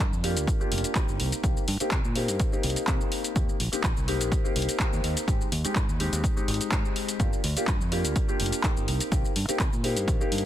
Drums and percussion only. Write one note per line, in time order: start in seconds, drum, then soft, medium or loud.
0.00 shaker soft
0.13 shaker soft
0.24 open hi-hat loud
0.37 closed hi-hat soft
0.37 shaker medium
0.47 kick loud
0.47 closed hi-hat medium
0.47 shaker medium
0.61 shaker soft
0.72 open hi-hat loud
0.78 closed hi-hat medium
0.84 closed hi-hat soft
0.84 shaker medium
0.95 kick loud
0.95 clap loud
0.95 closed hi-hat medium
0.95 shaker medium
1.08 shaker soft
1.20 open hi-hat loud
1.32 closed hi-hat soft
1.32 shaker medium
1.44 kick loud
1.44 closed hi-hat medium
1.44 shaker medium
1.57 shaker soft
1.68 open hi-hat loud
1.80 closed hi-hat soft
1.80 shaker medium
1.91 kick loud
1.91 clap loud
1.91 closed hi-hat medium
1.91 shaker medium
2.05 shaker soft
2.16 open hi-hat loud
2.28 closed hi-hat medium
2.28 shaker medium
2.40 kick loud
2.40 closed hi-hat medium
2.40 shaker medium
2.53 shaker soft
2.63 open hi-hat loud
2.70 closed hi-hat medium
2.76 closed hi-hat soft
2.76 shaker medium
2.87 kick loud
2.87 clap loud
2.87 closed hi-hat medium
2.87 shaker medium
3.01 shaker soft
3.12 open hi-hat medium
3.24 closed hi-hat soft
3.24 shaker medium
3.36 kick loud
3.36 closed hi-hat medium
3.36 shaker medium
3.49 shaker soft
3.60 open hi-hat loud
3.73 closed hi-hat soft
3.73 shaker medium
3.84 kick loud
3.84 clap loud
3.84 closed hi-hat medium
3.84 shaker medium
3.97 shaker soft
4.08 open hi-hat medium
4.21 closed hi-hat soft
4.21 shaker medium
4.32 kick loud
4.32 closed hi-hat medium
4.32 shaker medium
4.45 shaker soft
4.56 open hi-hat loud
4.62 closed hi-hat medium
4.69 closed hi-hat soft
4.69 shaker medium
4.80 kick loud
4.80 clap loud
4.80 closed hi-hat medium
4.80 shaker medium
4.93 shaker soft
5.04 open hi-hat medium
5.17 closed hi-hat soft
5.17 shaker medium
5.28 kick loud
5.28 closed hi-hat medium
5.28 shaker medium
5.41 shaker soft
5.52 open hi-hat loud
5.65 closed hi-hat soft
5.65 shaker medium
5.76 kick loud
5.76 clap loud
5.76 closed hi-hat medium
5.76 shaker medium
5.89 shaker soft
6.00 open hi-hat medium
6.13 closed hi-hat medium
6.13 shaker medium
6.24 kick loud
6.24 closed hi-hat medium
6.24 shaker medium
6.37 shaker soft
6.48 open hi-hat medium
6.54 closed hi-hat medium
6.61 closed hi-hat soft
6.61 shaker medium
6.72 kick loud
6.72 clap loud
6.72 closed hi-hat medium
6.72 shaker medium
6.85 shaker soft
6.96 open hi-hat medium
7.09 closed hi-hat medium
7.09 shaker medium
7.20 kick loud
7.20 closed hi-hat medium
7.20 shaker medium
7.33 shaker soft
7.44 open hi-hat loud
7.57 closed hi-hat medium
7.57 shaker medium
7.67 kick loud
7.67 clap loud
7.67 closed hi-hat medium
7.67 shaker medium
7.81 shaker soft
7.92 open hi-hat medium
8.05 closed hi-hat medium
8.05 shaker medium
8.16 kick loud
8.16 closed hi-hat medium
8.16 shaker medium
8.29 shaker soft
8.40 open hi-hat loud
8.46 closed hi-hat medium
8.52 closed hi-hat soft
8.52 shaker medium
8.64 kick loud
8.64 clap loud
8.64 closed hi-hat medium
8.64 shaker medium
8.77 shaker soft
8.88 open hi-hat medium
9.01 closed hi-hat medium
9.01 shaker medium
9.12 kick loud
9.12 closed hi-hat medium
9.12 shaker medium
9.25 shaker soft
9.36 open hi-hat loud
9.49 closed hi-hat medium
9.49 shaker medium
9.60 kick loud
9.60 clap loud
9.60 closed hi-hat medium
9.60 shaker medium
9.73 shaker soft
9.84 open hi-hat medium
9.97 closed hi-hat medium
9.97 shaker medium
10.08 kick loud
10.08 closed hi-hat medium
10.08 shaker medium
10.21 shaker soft
10.32 open hi-hat medium
10.38 closed hi-hat medium